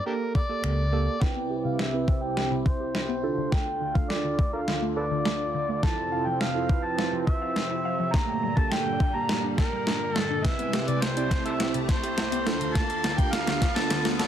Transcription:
0.06 tine electric piano A#3 G4 A4, harmonica D4 G4 A#4
0.35 harmonica D5, kick
0.49 tine electric piano A#3 G4 A4
0.64 fingered electric bass C#2, finger snap
0.93 tine electric piano A#3 G4 A4
1.21 supersaw synth C2 C3 E4 G4, synth arpeggio sound C3, tine electric piano C4 E4 B4, harmonica G5, kick, snare, riser
1.36 synth arpeggio sound B3
1.50 synth arpeggio sound G4
1.65 synth arpeggio sound C3, harmonica F5
1.79 harmonica E5, snare
1.93 tine electric piano C4 E4 B4
2.08 tine electric piano C4, kick
2.23 harmonica G5
2.37 synth arpeggio sound G4, snare
2.51 synth arpeggio sound C3
2.66 harmonica C5, kick
2.80 synth arpeggio sound G4
2.95 snare
3.09 synth arpeggio sound B3
3.23 supersaw synth D2 D3 F4, tine electric piano D4 F4 A4, synth arpeggio sound A4
3.38 synth arpeggio sound D3
3.52 synth arpeggio sound A3, harmonica G5, kick, snare
3.67 synth arpeggio sound A4
3.81 synth arpeggio sound D3
3.95 synth arpeggio sound A3, tine electric piano D4 F4 A4, harmonica F5, kick
4.10 synth arpeggio sound A4, harmonica D5, snare
4.25 synth arpeggio sound D3
4.39 synth arpeggio sound A3, kick
4.53 tine electric piano D4 F4 A4, synth arpeggio sound A4, harmonica A#4 D5 F5
4.68 synth arpeggio sound D3, snare
4.82 synth arpeggio sound A3
4.97 synth arpeggio sound A4, harmonica A4 B4 D5
5.11 synth arpeggio sound D3
5.25 synth arpeggio sound A3, snare
5.54 synth arpeggio sound D3
5.69 synth arpeggio sound A3
5.83 supersaw synth F2 C3 C4, synth arpeggio sound F3, tine electric piano E4 F4 A4, harmonica A5, kick, snare
5.98 synth arpeggio sound E4
6.12 synth arpeggio sound F5
6.26 synth arpeggio sound F3, harmonica G5
6.41 harmonica F5, snare
6.55 tine electric piano E4 F4 A4
6.69 tine electric piano E4 F4 B4, kick
6.84 harmonica A5
6.99 synth arpeggio sound F5, snare
7.13 synth arpeggio sound F3
7.27 harmonica E5, kick
7.42 synth arpeggio sound F5
7.56 snare
7.71 synth arpeggio sound E4
7.85 synth arpeggio sound F5
8.00 synth arpeggio sound F3
8.14 supersaw synth G2 A#2 D3, tine electric piano A3 A#3 G4, synth arpeggio sound D4, harmonica A#5, kick, snare
8.29 synth arpeggio sound G5
8.43 synth arpeggio sound G3
8.57 tine electric piano A#3 G4 A4, synth arpeggio sound D4, harmonica A5, kick
8.72 synth arpeggio sound G5, harmonica G5, snare
8.86 synth arpeggio sound G3
9.00 synth arpeggio sound D4, kick
9.15 tine electric piano A#3 G4 A5, synth arpeggio sound G5, harmonica A#5
9.29 synth arpeggio sound G3, snare
9.44 synth arpeggio sound D4
9.58 harmonica A#4, synth arpeggio sound G5, kick, snare
9.73 synth arpeggio sound G3
9.87 synth arpeggio sound D4, snare
10.14 synth arpeggio sound G3, harmonica A4, snare
10.30 synth arpeggio sound D4
10.44 supersaw synth C2 C3 E4 G4, synth arpeggio sound C3, tine electric piano C4 E4 B4, harmonica E5, kick, snare, closed hi-hat
10.59 synth arpeggio sound B3, closed hi-hat
10.73 synth arpeggio sound G4, snare, closed hi-hat
10.88 synth arpeggio sound C3, harmonica D5, closed hi-hat
11.02 harmonica C5, snare, closed hi-hat
11.16 tine electric piano C4 E4 D5, closed hi-hat
11.31 tine electric piano C4 E4 C5, kick, snare, closed hi-hat
11.45 harmonica A4 C5 E5, closed hi-hat
11.60 synth arpeggio sound G4, snare, closed hi-hat
11.74 synth arpeggio sound C3, closed hi-hat
11.89 harmonica C5, kick, snare, closed hi-hat
12.03 synth arpeggio sound G4, closed hi-hat
12.18 snare, closed hi-hat
12.32 synth arpeggio sound B3, closed hi-hat
12.46 supersaw synth D2 D3 F4 A4, tine electric piano D4 F4 A4, synth arpeggio sound A4, snare, closed hi-hat
12.61 synth arpeggio sound D3, closed hi-hat
12.75 synth arpeggio sound A3, harmonica A5, kick, snare, closed hi-hat
12.90 synth arpeggio sound A4, closed hi-hat
13.04 synth arpeggio sound D3, snare, closed hi-hat
13.18 synth arpeggio sound A3, tine electric piano D4 F4 G4, harmonica G5, kick, closed hi-hat
13.33 synth arpeggio sound A4, harmonica F5, snare, closed hi-hat
13.47 synth arpeggio sound D3, snare, closed hi-hat
13.62 synth arpeggio sound A3, kick, snare, closed hi-hat
13.76 tine electric piano D4 F4 A4, synth arpeggio sound A4, harmonica A5, snare, closed hi-hat
13.90 synth arpeggio sound D3, snare, closed hi-hat
14.05 synth arpeggio sound A3, snare, closed hi-hat
14.19 harmonica D4 F4 A4, synth arpeggio sound A4, snare, closed hi-hat

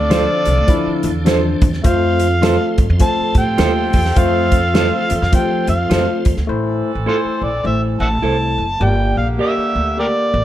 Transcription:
Already playing: upright bass D2, tonewheel organ D3 C4 D4, vibraphone D4, saxophone section D4 F4 A4, harmonica D5
0.09 tine electric piano F3 D4 C5, clean electric guitar F4 A4 C5, snare, closed hi-hat
0.45 upright bass C2, closed hi-hat
0.58 upright bass D2
0.68 tine electric piano F3 D4 E4, kick, closed hi-hat
0.87 muted upright bass stroke
1.03 upright bass E2, closed hi-hat
1.25 tine electric piano F3 D4 C5, clean electric guitar F4 A4 C5, snare, closed hi-hat
1.62 upright bass E2, kick, closed hi-hat
1.73 snare
1.84 upright bass F2, tonewheel organ F3 A4, tine electric piano A3 F4 C5, vibraphone F4, harmonica F5, kick, closed hi-hat
2.20 closed hi-hat
2.41 tine electric piano A3 F4 A4, clean electric guitar F4 A4 C5, snare, closed hi-hat
2.78 upright bass G2, kick, closed hi-hat
2.90 upright bass F2
3.00 saxophone section F3 C4 A4, tine electric piano A3 F4 C5, vibraphone A4, harmonica A5, kick, closed hi-hat
3.19 muted upright bass stroke
3.35 upright bass A2, vibraphone G4, harmonica G5, kick, closed hi-hat
3.58 upright bass D#2, tine electric piano A3 F4 A4, clean electric guitar F4 A4 C5, snare, closed hi-hat
3.93 upright bass E2, kick, open hi-hat
4.05 snare
4.16 upright bass F2, tine electric piano A3 F4 C5, vibraphone F4, harmonica F5, kick, closed hi-hat
4.52 kick, closed hi-hat
4.74 tine electric piano A3 F4 C5, clean electric guitar F4 A4 C5, snare, closed hi-hat
5.10 upright bass E2, closed hi-hat
5.22 upright bass F2, snare
5.32 upright bass F3, tine electric piano A3 F4 C5, vibraphone G4, harmonica G5, kick, closed hi-hat
5.67 upright bass F2, vibraphone F4, harmonica F5, closed hi-hat
5.90 upright bass F2, tine electric piano A3 F4 C5, clean electric guitar F4 A4 C5, snare, closed hi-hat
6.25 upright bass E2, kick, closed hi-hat
6.37 upright bass D2, snare
6.47 upright bass A1, saxophone section E3 C4 A4, tine electric piano A3 E4 C5
6.95 upright bass A1
7.06 tine electric piano A3 E4 C5, clean electric guitar E4 A4 C5, harmonica F4 A4 C5
7.25 muted upright bass stroke
7.42 upright bass A#1, harmonica D5
7.64 upright bass A1, tine electric piano A3 E4 C5, harmonica E5
8.00 upright bass A1, harmonica E5 F#5 A5
8.22 upright bass C2, tine electric piano A3 E4 A4, clean electric guitar E4 A4 C5
8.58 upright bass F#1
8.80 upright bass G1, saxophone section D3 A#3 G4, tine electric piano A#3 G4 D5, harmonica G5
9.17 upright bass A#1, harmonica F5
9.38 tine electric piano A#3 G4 D5, clean electric guitar G4 A#4 D5, harmonica E5
9.58 muted upright bass stroke
9.75 upright bass D2
9.97 tine electric piano A#3 G4 A#4, harmonica G4 A#4 D5
10.34 upright bass A1

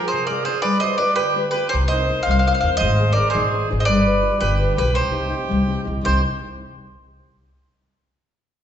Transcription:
Already playing: nylon-string guitar F4 G#4 C5
0.06 accordion G#4, mandolin C5
0.13 nylon-string guitar C3
0.25 accordion A#4, mandolin D5
0.30 nylon-string guitar F4 G#4 C5
0.42 accordion G#4, mandolin C5
0.48 nylon-string guitar F4 G#4 C5
0.62 nylon-string guitar G3, accordion B4, mandolin D5
0.80 nylon-string guitar F4 G4, accordion C5, mandolin D#5
0.84 nylon-string guitar B4
0.97 nylon-string guitar F4 G4 B4, accordion B4, mandolin D5
1.16 nylon-string guitar D3, accordion G4, mandolin B4
1.36 nylon-string guitar F4 G4 B4
1.50 nylon-string guitar F4, accordion G4, mandolin B4
1.54 nylon-string guitar G4 B4
1.69 nylon-string guitar C3, accordion G4, mandolin C5
1.74 upright bass C2
1.88 nylon-string guitar C4 D#4, accordion C5, mandolin D#5
1.93 nylon-string guitar A#4
2.10 nylon-string guitar C4 D#4 A#4
2.23 accordion C5, mandolin F5
2.27 upright bass C2, nylon-string guitar G3, mandolin F5
2.39 mandolin F5
2.47 nylon-string guitar C4 D#4 A#4, mandolin F5
2.55 mandolin F5
2.61 upright bass D#2, nylon-string guitar C4 D#4 A#4, mandolin F5
2.77 accordion C5, mandolin D#5
2.81 upright bass G#1, nylon-string guitar G#3
2.98 nylon-string guitar D#4 G#4 C5
3.13 accordion A#4, mandolin D5
3.17 nylon-string guitar D#4 G#4 C5
3.29 accordion G#4, mandolin C5
3.34 upright bass G#1, nylon-string guitar D#3
3.54 nylon-string guitar D#4 G#4 C5
3.70 upright bass G#1, nylon-string guitar D#4 G#4 C5
3.79 accordion C5, mandolin D#5
3.84 upright bass G1, accordion B4, mandolin D5
3.89 nylon-string guitar G3
4.06 nylon-string guitar F4 G4 B4
4.23 nylon-string guitar F4 G4 B4
4.39 upright bass G1, nylon-string guitar D3, accordion G4, mandolin B4
4.59 nylon-string guitar F4 G4 B4
4.74 upright bass B1, nylon-string guitar F4 G4 B4, accordion G4, mandolin B4
4.93 upright bass C2, nylon-string guitar C3, accordion G4, mandolin C5
5.11 nylon-string guitar C4 D#4 G4
5.30 nylon-string guitar C4 D#4 G4
5.48 upright bass C2, nylon-string guitar G3
5.67 nylon-string guitar C4 D#4 G4
5.84 upright bass C2, nylon-string guitar C4 D#4 G4
6.01 nylon-string guitar C3 G3 C4 D#4 G4, accordion G4, mandolin C5
6.07 upright bass C2

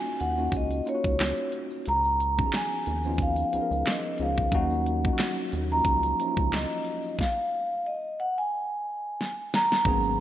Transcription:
Already playing: tine electric piano A#3 C#4 D#4 F4 F#4, vibraphone G#5
0.04 shaker
0.20 analog synth bass D#2, vibraphone F#5, closed hi-hat
0.37 tine electric piano A#3 C#4 D#4 F4 F#4, shaker
0.52 analog synth bass C#2, kick, closed hi-hat, shaker
0.57 vibraphone D#5
0.71 closed hi-hat, shaker
0.85 tine electric piano A#3 C#4 D#4 F4, vibraphone C#5, closed hi-hat, shaker
0.95 tine electric piano F#4
1.04 analog synth bass C#2, kick, shaker
1.20 finger snap, snare, clap, closed hi-hat, shaker
1.37 closed hi-hat, shaker
1.52 closed hi-hat
1.70 shaker
1.86 analog synth bass C#2, vibraphone A#5, closed hi-hat, shaker
2.03 shaker
2.20 closed hi-hat
2.38 tine electric piano F3 B3 C#4 D#4 F#4, kick, shaker
2.46 tine electric piano G#4
2.52 vibraphone G#5, finger snap, snare, clap, closed hi-hat, shaker
2.70 shaker
2.86 analog synth bass D#2, closed hi-hat
3.04 tine electric piano F3 B3 C#4 D#4 F4, shaker
3.18 kick, closed hi-hat, shaker
3.22 vibraphone F5
3.36 closed hi-hat, shaker
3.53 analog synth bass C#2, tine electric piano F3 B3 C#4 D#4 G#4, closed hi-hat, shaker
3.61 tine electric piano A#4
3.71 analog synth bass C#2, shaker
3.86 vibraphone D#5, finger snap, snare, clap, closed hi-hat, shaker
4.03 closed hi-hat, shaker
4.18 analog synth bass C#2, tine electric piano F3 B3 C#4 D#4 G#4, closed hi-hat
4.22 vibraphone F5
4.37 kick, shaker
4.52 analog synth bass D#2, tine electric piano F#3 A#3 C#4 D#4 F#4, vibraphone F#5, kick, closed hi-hat, shaker
4.70 shaker
4.86 closed hi-hat
5.04 tine electric piano F#3 A#3 C#4 D#4 F4, kick, shaker
5.13 tine electric piano F#4
5.18 finger snap, snare, clap, closed hi-hat, shaker
5.37 shaker
5.52 analog synth bass D#2, closed hi-hat
5.71 tine electric piano F3 A#3 C#4 D#4 F4, vibraphone A#5, shaker
5.85 analog synth bass C#2, kick, closed hi-hat, shaker
6.03 closed hi-hat, shaker
6.19 tine electric piano F3 A#3 C#4 D#4 E4, closed hi-hat, shaker
6.28 tine electric piano F4
6.37 analog synth bass C#2, kick, shaker
6.53 vibraphone D#5, finger snap, snare, clap, closed hi-hat, shaker
6.70 closed hi-hat, shaker
6.85 closed hi-hat
7.03 shaker
7.19 vibraphone F5, kick, snare
7.86 vibraphone D#5
8.20 vibraphone F#5
8.38 vibraphone G#5
9.21 snare
9.54 vibraphone A#5, snare
9.72 snare
9.85 analog synth bass G#1, tine electric piano F#3 A#3 B3 C#4 G#4, kick, closed hi-hat, shaker
10.03 shaker

